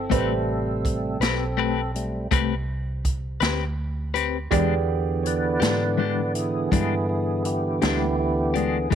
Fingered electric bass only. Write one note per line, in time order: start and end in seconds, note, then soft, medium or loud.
0.11 1.18 A1 medium
1.20 2.27 B1 medium
2.32 3.38 C2 medium
3.41 4.48 D2 medium
4.51 5.58 E2 medium
5.61 6.68 G#2 medium
6.72 7.79 G2 medium
7.82 8.89 D2 medium